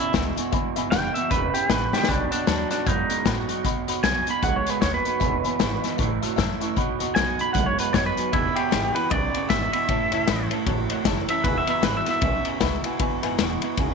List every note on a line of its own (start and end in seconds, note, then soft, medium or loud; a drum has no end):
0.00 0.13 E2 medium
0.00 0.49 B2 medium
0.00 0.13 C#3 medium
0.00 0.13 E4 loud
0.13 0.34 C#2 medium
0.13 0.35 E2 medium
0.13 0.36 B2 medium
0.13 0.36 E3 medium
0.13 0.36 G#3 medium
0.13 0.36 B3 medium
0.13 0.35 E4 medium
0.13 0.27 E5 medium
0.13 0.28 G#5 medium
0.13 0.28 B5 loud
0.13 kick medium
0.13 snare loud
0.13 closed hi-hat medium
0.36 0.52 E2 medium
0.36 0.52 B2 medium
0.36 0.53 B3 soft
0.36 0.52 E4 medium
0.36 0.46 E5 medium
0.36 0.47 G#5 medium
0.36 0.47 C#6 loud
0.36 muted upright bass stroke medium
0.36 closed hi-hat medium
0.52 0.73 E1 medium
0.52 1.27 E2 medium
0.52 0.74 E2 loud
0.52 0.74 B2 loud
0.52 0.66 E5 loud
0.52 0.67 G#5 loud
0.52 0.67 B5 loud
0.52 kick loud
0.52 closed hi-hat medium
0.76 0.90 G#1 loud
0.76 0.90 E2 medium
0.76 0.91 B2 medium
0.76 0.85 E5 loud
0.76 0.86 G#5 loud
0.76 0.86 B5 loud
0.76 closed hi-hat medium
0.91 1.12 E1 medium
0.91 1.13 E2 medium
0.91 1.13 B2 loud
0.91 1.29 E3 medium
0.91 1.30 G#3 medium
0.91 1.30 B3 loud
0.91 1.30 E4 loud
0.91 1.06 E5 medium
0.91 1.14 G5 loud
0.91 1.07 B5 medium
0.91 snare loud
0.91 closed hi-hat medium
1.14 1.29 E2 medium
1.14 1.30 B2 medium
1.14 1.30 E5 medium
1.14 1.25 E5 medium
1.14 1.25 G#5 medium
1.14 1.26 B5 medium
1.14 muted upright bass stroke medium
1.14 closed hi-hat medium
1.31 1.51 E1 medium
1.31 1.52 E2 medium
1.31 1.69 G#2 medium
1.31 1.52 C#3 medium
1.31 1.53 B4 medium
1.31 1.45 E5 medium
1.31 1.45 G#5 medium
1.31 1.46 B5 medium
1.31 kick loud
1.31 closed hi-hat medium
1.54 1.68 E2 medium
1.54 1.69 C#3 medium
1.54 1.69 G4 medium
1.54 1.63 E5 medium
1.54 1.64 G#5 medium
1.54 1.64 B5 medium
1.54 muted upright bass stroke medium
1.54 closed hi-hat medium
1.69 1.90 A1 medium
1.69 1.91 E2 medium
1.69 2.07 A2 medium
1.69 1.91 B2 medium
1.69 1.92 B4 medium
1.69 1.84 E5 loud
1.69 1.84 G#5 medium
1.69 1.84 C#6 loud
1.69 kick medium
1.69 snare loud
1.69 closed hi-hat medium
1.93 2.07 E2 medium
1.93 2.07 B2 medium
1.93 2.08 G4 medium
1.93 2.02 E5 medium
1.93 2.03 G#5 medium
1.93 2.03 C#6 medium
1.93 muted upright bass stroke medium
1.93 snare medium
2.04 snare medium
2.08 2.29 B1 medium
2.08 2.83 B2 medium
2.08 2.30 B2 medium
2.08 2.30 F#3 medium
2.08 2.31 D4 medium
2.08 2.23 D#5 loud
2.08 2.23 F#5 medium
2.08 2.24 B5 loud
2.08 kick loud
2.08 closed hi-hat medium
2.31 2.46 B2 medium
2.31 2.46 F#3 medium
2.31 2.46 D4 loud
2.31 2.41 D#5 loud
2.31 2.42 F#5 loud
2.31 2.42 A5 loud
2.31 muted upright bass stroke medium
2.31 closed hi-hat medium
2.47 2.68 D#2 medium
2.47 2.69 B2 medium
2.47 2.70 F#3 medium
2.47 2.69 F#3 loud
2.47 2.70 B3 medium
2.47 2.70 D4 medium
2.47 2.70 D#4 loud
2.47 2.69 F#4 medium
2.47 2.62 B5 medium
2.47 snare loud
2.47 closed hi-hat medium
2.70 2.85 B2 medium
2.70 2.85 F#3 medium
2.70 2.86 D4 medium
2.70 2.87 D#4 soft
2.70 2.86 F#4 medium
2.70 2.80 D#5 medium
2.70 2.81 F#5 medium
2.70 2.82 B5 medium
2.70 muted upright bass stroke medium
2.70 snare soft
2.70 closed hi-hat medium
2.86 3.07 F#2 medium
2.86 3.62 F#2 medium
2.86 3.08 B2 medium
2.86 3.08 G#3 medium
2.86 3.24 D#4 loud
2.86 3.01 D#5 medium
2.86 3.01 F#5 medium
2.86 3.01 B5 medium
2.86 kick loud
2.86 closed hi-hat medium
3.09 3.24 B2 medium
3.09 3.24 G#3 medium
3.09 3.19 D#5 medium
3.09 3.20 F#5 medium
3.09 3.20 B5 medium
3.09 muted upright bass stroke medium
3.09 closed hi-hat medium
3.25 3.46 A2 medium
3.25 3.47 B2 medium
3.25 3.48 F#3 medium
3.25 3.47 F#3 medium
3.25 3.48 B3 medium
3.25 3.49 D#4 loud
3.25 3.47 F#4 medium
3.25 3.39 D#5 medium
3.25 3.40 F#5 medium
3.25 3.40 B5 loud
3.25 kick medium
3.25 snare loud
3.25 closed hi-hat medium
3.48 3.63 B2 medium
3.48 3.63 F#3 medium
3.48 3.65 D#4 soft
3.48 3.64 F#4 medium
3.48 3.58 D#5 medium
3.48 3.58 F#5 medium
3.48 3.59 C#6 medium
3.48 muted upright bass stroke medium
3.48 closed hi-hat medium
3.64 3.85 B1 medium
3.64 3.86 B2 loud
3.64 4.40 B2 loud
3.64 3.86 F#3 medium
3.64 3.78 D#5 loud
3.64 3.79 F#5 loud
3.64 3.79 B5 loud
3.64 kick loud
3.64 closed hi-hat medium
3.87 4.01 D#2 medium
3.87 4.02 B2 medium
3.87 4.02 F#3 medium
3.87 3.97 D#5 loud
3.87 3.97 F#5 loud
3.87 3.98 B5 loud
3.87 closed hi-hat medium
4.03 4.23 B1 medium
4.03 4.25 B2 medium
4.03 4.26 F#3 medium
4.03 4.25 F#3 medium
4.03 4.26 B3 medium
4.03 4.26 D#4 medium
4.03 4.26 F#4 loud
4.03 4.29 G#5 loud
4.03 4.18 B5 medium
4.03 snare loud
4.03 closed hi-hat medium
4.26 4.41 B2 medium
4.26 4.42 F#3 medium
4.26 4.43 D#4 soft
4.26 4.42 F#4 medium
4.26 4.36 D#5 medium
4.26 4.37 F#5 medium
4.26 4.37 B5 medium
4.26 4.43 B5 medium
4.26 muted upright bass stroke medium
4.26 closed hi-hat medium
4.42 4.63 B1 loud
4.42 4.80 G#2 medium
4.42 4.64 B2 medium
4.42 4.64 G#3 loud
4.42 4.56 D#5 medium
4.42 4.56 F#5 medium
4.42 4.58 C#6 medium
4.42 kick loud
4.42 closed hi-hat medium
4.56 4.70 C#5 medium
4.66 4.81 B2 medium
4.66 4.81 G#3 medium
4.66 4.81 B4 loud
4.66 4.76 F#5 medium
4.66 4.76 G#5 medium
4.66 muted upright bass stroke medium
4.66 closed hi-hat medium
4.81 5.02 D#2 medium
4.81 5.19 F#2 medium
4.81 5.03 B2 medium
4.81 5.03 F#3 medium
4.81 4.94 C#5 medium
4.81 4.95 D#5 medium
4.81 4.96 F#5 medium
4.81 4.96 B5 loud
4.81 kick medium
4.81 snare loud
4.81 closed hi-hat medium
4.94 6.08 B4 medium
5.05 5.20 B2 medium
5.05 5.20 F#3 medium
5.05 5.14 D#5 medium
5.05 5.15 F#5 medium
5.05 5.15 B5 medium
5.05 muted upright bass stroke medium
5.05 closed hi-hat medium
5.20 5.41 E1 medium
5.20 5.95 E2 loud
5.20 5.42 E2 medium
5.20 5.42 B2 loud
5.20 5.34 E5 loud
5.20 5.35 G#5 medium
5.20 5.35 B5 loud
5.20 kick loud
5.20 closed hi-hat medium
5.44 5.59 E2 medium
5.44 5.59 B2 medium
5.44 5.53 E5 loud
5.44 5.54 G#5 medium
5.44 5.54 B5 loud
5.44 muted upright bass stroke medium
5.44 closed hi-hat medium
5.59 5.80 G#1 medium
5.59 5.81 E2 medium
5.59 5.82 B2 loud
5.59 5.97 E3 medium
5.59 5.97 G#3 medium
5.59 5.98 B3 medium
5.59 5.98 E4 loud
5.59 5.73 E5 medium
5.59 5.74 G#5 medium
5.59 5.74 B5 medium
5.59 snare loud
5.59 closed hi-hat medium
5.82 5.98 E2 medium
5.82 5.98 B2 medium
5.82 5.92 E5 medium
5.82 5.92 G#5 medium
5.82 5.93 B5 medium
5.82 muted upright bass stroke medium
5.82 snare soft
5.82 closed hi-hat medium
5.97 6.19 A1 medium
5.97 6.73 A2 loud
5.97 6.20 A2 medium
5.97 6.21 E3 medium
5.97 6.12 E5 loud
5.97 6.12 A5 medium
5.97 6.13 C#6 loud
5.97 kick loud
5.97 closed hi-hat medium
6.21 6.36 A2 medium
6.21 6.37 F#3 medium
6.21 6.31 E5 medium
6.21 6.32 A5 medium
6.21 6.32 E6 medium
6.21 muted upright bass stroke medium
6.21 closed hi-hat medium
6.36 6.58 F#2 medium
6.36 6.59 A2 medium
6.36 6.59 E3 medium
6.36 6.60 A3 medium
6.36 6.60 C#4 medium
6.36 6.59 E4 medium
6.36 6.51 E5 loud
6.36 6.52 A5 loud
6.36 6.52 E6 loud
6.36 kick medium
6.36 snare loud
6.36 closed hi-hat medium
6.60 6.75 A2 medium
6.60 6.76 E3 medium
6.60 6.77 C#4 soft
6.60 6.76 E4 medium
6.60 6.70 E5 medium
6.60 6.70 A5 medium
6.60 6.71 C#6 loud
6.60 muted upright bass stroke medium
6.60 closed hi-hat medium
6.75 6.97 B1 medium
6.75 7.52 B2 medium
6.75 6.98 B2 medium
6.75 6.98 F#3 medium
6.75 6.90 D#5 loud
6.75 6.91 F#5 loud
6.75 6.91 B5 loud
6.75 kick loud
6.75 closed hi-hat medium
6.99 7.14 D#2 loud
6.99 7.14 B2 medium
6.99 7.15 F#3 medium
6.99 7.09 D#5 loud
6.99 7.10 F#5 loud
6.99 7.10 C#6 loud
6.99 closed hi-hat medium
7.15 7.36 B1 medium
7.15 7.37 B2 medium
7.15 7.38 F#3 medium
7.15 7.37 F#3 medium
7.15 7.38 B3 medium
7.15 7.39 D#4 medium
7.15 7.37 F#4 loud
7.15 7.41 G#5 loud
7.15 7.31 B5 medium
7.15 snare loud
7.15 closed hi-hat medium
7.38 7.53 B2 medium
7.38 7.54 F#3 medium
7.38 7.55 D#4 soft
7.38 7.54 F#4 medium
7.38 7.48 D#5 medium
7.38 7.49 F#5 medium
7.38 7.49 G#5 medium
7.38 7.53 B5 medium
7.38 muted upright bass stroke medium
7.38 closed hi-hat medium
7.53 7.75 B1 loud
7.53 8.29 F#2 medium
7.53 7.76 B2 medium
7.53 7.76 G#3 medium
7.53 7.69 D#5 medium
7.53 7.67 F#5 medium
7.53 7.69 F#5 medium
7.53 7.70 B5 medium
7.53 kick loud
7.53 closed hi-hat medium
7.66 7.79 C#5 medium
7.78 7.92 B2 medium
7.78 7.92 G#3 medium
7.78 7.93 B4 medium
7.78 7.88 D#5 medium
7.78 7.88 F#5 medium
7.78 7.89 A5 medium
7.78 muted upright bass stroke medium
7.78 closed hi-hat medium
7.93 8.14 F#2 medium
7.93 8.15 B2 medium
7.93 8.31 F#3 medium
7.93 8.15 F#3 medium
7.93 8.31 B3 medium
7.93 8.32 D#4 medium
7.93 8.32 F#4 medium
7.93 8.06 C#5 medium
7.93 8.08 D#5 medium
7.93 8.08 F#5 medium
7.93 8.09 B5 medium
7.93 kick medium
7.93 snare loud
7.93 closed hi-hat medium
8.06 8.32 B4 medium
8.17 8.31 B2 medium
8.17 8.32 F#3 medium
8.17 8.27 F#5 medium
8.17 8.27 G#5 medium
8.17 muted upright bass stroke medium
8.17 closed hi-hat medium
8.33 8.53 E1 medium
8.33 9.08 E2 medium
8.33 8.54 E2 medium
8.33 8.54 B2 medium
8.33 8.56 E4 medium
8.33 8.47 E5 loud
8.33 8.47 G#5 medium
8.33 8.48 B5 loud
8.33 kick loud
8.33 ride medium
8.56 8.70 E2 medium
8.56 8.70 B2 medium
8.56 8.94 G4 medium
8.56 8.65 E5 loud
8.56 8.66 G#5 medium
8.56 8.66 B5 loud
8.56 muted upright bass stroke medium
8.56 ride medium
8.71 8.92 G#1 medium
8.71 8.93 E2 medium
8.71 8.93 B2 medium
8.71 8.94 E3 medium
8.71 8.94 G#3 medium
8.71 8.95 B3 medium
8.71 8.92 E4 medium
8.71 8.86 E5 medium
8.71 8.86 G#5 medium
8.71 8.86 B5 medium
8.71 snare loud
8.71 ride medium
8.94 9.09 E2 medium
8.94 9.10 B2 medium
8.94 9.11 B3 soft
8.94 9.10 E4 medium
8.94 9.11 B4 medium
8.94 9.04 E5 medium
8.94 9.05 G#5 medium
8.94 9.05 B5 medium
8.94 muted upright bass stroke medium
8.94 ride medium
9.10 9.31 B1 loud
9.10 9.32 E2 medium
9.10 9.85 B2 medium
9.10 9.32 C#3 medium
9.10 9.49 D5 medium
9.10 9.24 E5 medium
9.10 9.25 G#5 medium
9.10 9.25 B5 medium
9.10 kick loud
9.10 ride medium
9.34 9.48 E2 medium
9.34 9.49 C#3 medium
9.34 9.43 E5 medium
9.34 9.44 G#5 medium
9.34 9.44 C#6 medium
9.34 muted upright bass stroke medium
9.34 ride medium
9.49 9.70 G#1 medium
9.49 9.71 E2 medium
9.49 9.71 B2 medium
9.49 9.72 E3 medium
9.49 9.72 G#3 medium
9.49 9.73 B3 medium
9.49 9.71 E4 loud
9.49 9.63 E5 medium
9.49 9.72 E5 medium
9.49 9.64 G#5 medium
9.49 9.64 B5 loud
9.49 kick medium
9.49 snare loud
9.49 ride medium
9.72 9.87 E2 medium
9.72 9.87 B2 medium
9.72 9.89 B3 medium
9.72 9.88 E4 medium
9.72 9.82 E5 medium
9.72 10.49 E5 medium
9.72 9.83 G#5 medium
9.72 9.83 B5 medium
9.72 muted upright bass stroke medium
9.72 ride medium
9.88 10.09 A1 loud
9.88 10.10 A2 medium
9.88 10.64 A2 loud
9.88 10.10 E3 loud
9.88 10.03 C#5 loud
9.88 10.03 E5 medium
9.88 10.04 A5 loud
9.88 kick loud
9.88 ride medium
10.12 10.26 C#2 loud
10.12 10.26 A2 medium
10.12 10.26 E3 medium
10.12 10.21 C#5 loud
10.12 10.22 E5 medium
10.12 10.22 A5 loud
10.12 ride medium
10.27 10.48 A1 medium
10.27 10.49 A2 medium
10.27 10.50 E3 medium
10.27 10.49 E3 loud
10.27 10.50 A3 medium
10.27 10.51 C#4 medium
10.27 10.49 E4 medium
10.27 10.42 C#5 medium
10.27 10.42 E5 medium
10.27 10.43 B5 loud
10.27 snare loud
10.27 ride medium
10.51 10.65 A2 medium
10.51 10.65 E3 medium
10.51 10.67 C#4 soft
10.51 10.66 E4 medium
10.51 10.60 C#5 medium
10.51 10.61 E5 medium
10.51 10.61 A5 medium
10.51 muted upright bass stroke medium
10.51 ride medium
10.66 10.87 A1 loud
10.66 11.42 E2 medium
10.66 10.87 A2 medium
10.66 10.88 F#3 medium
10.66 10.81 C#5 loud
10.66 10.81 E5 medium
10.66 10.82 A5 loud
10.66 kick loud
10.66 ride medium
10.89 11.04 A2 medium
10.89 11.04 F#3 medium
10.89 10.99 C#5 medium
10.89 11.00 E5 medium
10.89 11.00 F#5 loud
10.89 muted upright bass stroke medium
10.89 ride medium
11.04 11.25 F#1 medium
11.04 11.27 A2 medium
11.04 11.27 E3 medium
11.04 11.28 A3 medium
11.04 11.28 C#4 medium
11.04 11.27 E4 loud
11.04 11.19 C#5 loud
11.04 11.20 E5 loud
11.04 11.20 A5 loud
11.04 kick medium
11.04 snare loud
11.04 ride medium
11.28 11.43 A2 medium
11.28 11.43 E3 medium
11.28 11.45 C#4 soft
11.28 11.44 E4 medium
11.28 11.38 C#5 medium
11.28 11.39 E5 medium
11.28 11.44 E5 medium
11.28 11.39 A5 medium
11.28 muted upright bass stroke medium
11.28 ride medium
11.44 11.64 E1 medium
11.44 11.65 E2 medium
11.44 12.19 E2 medium
11.44 11.65 B2 loud
11.44 11.57 B4 medium
11.44 11.59 B4 loud
11.44 11.59 E5 medium
11.44 11.60 G#5 loud
11.44 kick loud
11.44 ride medium
11.58 11.69 E5 medium
11.67 11.81 E2 medium
11.67 11.81 B2 medium
11.67 11.77 B4 loud
11.67 11.78 E5 medium
11.67 11.83 E5 loud
11.67 11.78 B5 loud
11.67 muted upright bass stroke medium
11.67 ride medium
11.82 12.03 G#1 medium
11.82 12.04 E2 medium
11.82 12.04 B2 loud
11.82 12.05 E3 loud
11.82 12.06 G#3 medium
11.82 12.06 B3 medium
11.82 12.04 E4 medium
11.82 11.96 B4 loud
11.82 11.98 E5 medium
11.82 11.98 G#5 medium
11.82 snare loud
11.82 ride medium
11.97 12.09 E5 medium
12.05 12.20 E2 medium
12.05 12.21 B2 medium
12.05 12.22 B3 soft
12.05 12.21 E4 medium
12.05 12.16 B4 medium
12.05 12.16 E5 medium
12.05 12.17 B5 medium
12.05 muted upright bass stroke medium
12.05 snare soft
12.05 ride medium
12.11 12.48 E5 medium
12.21 12.42 B1 loud
12.21 12.43 E2 medium
12.21 12.96 B2 loud
12.21 12.43 C#3 loud
12.21 12.36 B4 medium
12.21 12.37 E5 medium
12.21 12.37 G#5 medium
12.21 kick loud
12.21 ride medium
12.45 12.59 E2 medium
12.45 12.60 C#3 medium
12.45 12.55 B4 medium
12.45 12.55 E5 medium
12.45 12.56 G#5 medium
12.45 muted upright bass stroke medium
12.45 ride medium
12.60 12.81 C#2 medium
12.60 12.82 E2 medium
12.60 12.82 B2 medium
12.60 12.83 E3 medium
12.60 12.83 G#3 medium
12.60 12.84 B3 loud
12.60 12.83 E4 medium
12.60 12.75 B4 loud
12.60 12.75 E5 loud
12.60 12.76 B5 loud
12.60 kick medium
12.60 snare loud
12.60 ride medium
12.84 12.98 E2 medium
12.84 12.99 B2 medium
12.84 13.00 B3 soft
12.84 12.99 E4 medium
12.84 12.94 B4 medium
12.84 12.94 E5 medium
12.84 12.95 G#5 loud
12.84 muted upright bass stroke medium
12.84 ride medium
12.99 13.20 E1 medium
12.99 13.74 E2 loud
12.99 13.21 E2 medium
12.99 13.21 B2 loud
12.99 13.14 B4 loud
12.99 13.14 E5 loud
12.99 13.15 G#5 loud
12.99 kick loud
12.99 ride medium
13.22 13.36 G#1 loud
13.22 13.37 E2 medium
13.22 13.37 B2 medium
13.22 13.32 B4 loud
13.22 13.33 E5 loud
13.22 13.33 G#5 loud
13.22 ride medium
13.38 13.59 E1 medium
13.38 13.60 E2 medium
13.38 13.60 B2 medium
13.38 13.61 E3 medium
13.38 13.61 G#3 medium
13.38 13.62 B3 loud
13.38 13.60 E4 loud
13.38 13.53 E5 medium
13.38 13.53 G#5 medium
13.38 snare loud
13.38 ride medium
13.61 13.76 E2 medium
13.61 13.77 B2 medium
13.61 13.78 B3 medium
13.61 13.76 E4 medium
13.61 13.72 B4 medium
13.61 13.72 E5 medium
13.61 13.72 F#5 medium
13.61 muted upright bass stroke medium
13.61 ride medium
13.77 13.94 E1 medium
13.77 13.94 E2 medium
13.77 13.94 B2 medium
13.77 13.94 C#3 medium
13.77 13.91 B4 medium
13.77 13.92 E5 medium
13.77 13.92 G#5 loud
13.77 kick loud
13.77 ride medium